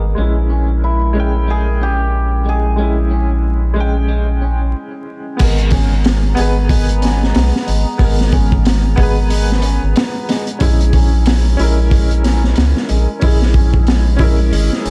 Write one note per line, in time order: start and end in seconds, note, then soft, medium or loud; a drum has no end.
0.00 0.15 G#1 medium
0.00 5.35 G#3 medium
0.00 0.13 A#3 medium
0.00 0.15 B3 medium
0.00 1.27 G#4 medium
0.00 0.17 A#4 loud
0.00 0.31 B4 medium
0.00 0.13 A#5 medium
0.15 4.74 A#1 medium
0.15 1.11 G#3 medium
0.15 0.36 G#3 medium
0.15 5.35 C#4 medium
0.15 1.13 C#4 medium
0.15 2.75 A#4 medium
0.21 1.14 E4 medium
0.50 0.69 C#4 medium
0.84 4.32 E4 medium
1.13 2.74 G#3 medium
1.13 1.34 G#3 medium
1.13 2.76 C#4 medium
1.20 2.77 G5 medium
1.48 1.66 G#3 medium
1.48 1.89 G#4 loud
1.81 1.99 C#4 medium
1.81 2.55 G4 medium
2.46 2.64 G#3 medium
2.46 5.52 G#4 medium
2.76 3.72 G#3 medium
2.76 2.97 G#3 medium
2.76 3.74 C#4 medium
2.82 3.75 E4 medium
3.11 3.29 C#4 medium
3.74 4.73 G#3 medium
3.74 3.95 G#3 medium
3.74 4.74 C#4 medium
3.80 4.76 G5 loud
4.09 4.27 G#3 medium
4.42 4.60 C#4 medium
5.37 6.35 G#1 medium
5.37 10.57 G#3 medium
5.37 5.58 G#3 loud
5.37 6.33 B3 medium
5.37 10.57 B3 medium
5.37 6.34 G#4 medium
5.37 13.18 A#5 medium
5.37 kick loud
5.37 open hi-hat medium
5.37 crash medium
5.43 6.36 A#4 medium
5.58 closed hi-hat soft
5.70 5.91 C#4 medium
5.70 kick medium
5.70 open hi-hat medium
6.04 snare loud
6.04 open hi-hat medium
6.35 7.33 G#1 medium
6.35 6.55 G#3 medium
6.35 7.96 B3 loud
6.35 7.98 G#4 medium
6.35 open hi-hat medium
6.41 7.99 B4 loud
6.69 6.88 G#3 medium
6.69 kick loud
6.69 open hi-hat medium
6.89 closed hi-hat soft
7.02 7.21 C#4 medium
7.02 snare soft
7.02 open hi-hat medium
7.23 snare soft
7.35 7.52 B1 loud
7.35 snare loud
7.35 open hi-hat medium
7.56 snare soft
7.67 7.85 G#1 medium
7.67 7.86 G#3 medium
7.67 open hi-hat medium
7.98 8.95 G#1 medium
7.98 8.18 G#3 loud
7.98 8.94 B3 medium
7.98 8.95 G#4 medium
7.98 kick loud
7.98 open hi-hat medium
8.04 8.97 A#4 medium
8.21 snare soft
8.32 8.51 C#4 medium
8.32 kick medium
8.32 open hi-hat medium
8.52 kick medium
8.65 snare loud
8.65 open hi-hat loud
8.96 9.79 G#1 medium
8.96 9.16 G#3 medium
8.96 10.57 B3 loud
8.96 10.59 G#4 medium
8.96 kick loud
8.96 open hi-hat medium
9.03 10.60 B4 loud
9.30 9.49 G#3 medium
9.30 open hi-hat medium
9.52 snare soft
9.62 9.82 C#4 medium
9.62 open hi-hat medium
9.83 9.95 G#1 medium
9.96 snare loud
9.96 open hi-hat medium
10.29 10.47 G#3 medium
10.29 snare medium
10.29 open hi-hat medium
10.47 closed hi-hat soft
10.59 11.56 A#1 loud
10.59 10.80 G#3 loud
10.59 14.90 G#3 medium
10.59 11.55 C#4 medium
10.59 14.90 C#4 medium
10.59 11.56 E4 medium
10.59 kick loud
10.59 open hi-hat medium
10.65 11.58 G#4 medium
10.81 closed hi-hat soft
10.93 11.12 C#4 medium
10.93 kick loud
10.93 open hi-hat medium
11.26 snare loud
11.26 open hi-hat medium
11.57 12.55 A#1 medium
11.57 11.77 G#3 medium
11.57 13.18 C#4 medium
11.57 13.19 E4 medium
11.57 open hi-hat medium
11.63 13.21 A#4 loud
11.91 12.10 G#3 loud
11.91 kick loud
11.91 open hi-hat medium
12.11 closed hi-hat soft
12.24 12.43 C#4 medium
12.24 snare medium
12.24 open hi-hat medium
12.44 snare soft
12.56 12.74 C#2 loud
12.56 snare loud
12.56 open hi-hat medium
12.77 snare soft
12.89 13.07 A#1 medium
12.89 13.08 G#3 medium
12.89 open hi-hat medium
13.19 14.18 A#1 loud
13.19 13.40 G#3 loud
13.19 14.15 C#4 medium
13.19 14.17 E4 medium
13.19 14.90 G#4 medium
13.19 kick loud
13.19 open hi-hat medium
13.26 14.19 G#4 medium
13.42 snare soft
13.54 13.73 C#4 medium
13.54 kick loud
13.54 open hi-hat medium
13.74 kick medium
13.87 snare loud
13.87 open hi-hat medium
14.17 14.52 A#1 medium
14.17 14.38 G#3 medium
14.17 14.90 C#4 loud
14.17 14.90 E4 medium
14.17 kick loud
14.17 open hi-hat medium
14.23 14.90 A#4 loud
14.52 14.70 G#1 medium
14.52 14.71 G#3 medium
14.52 open hi-hat medium
14.73 snare soft
14.85 14.90 E1 medium
14.85 14.90 C#4 medium
14.85 open hi-hat medium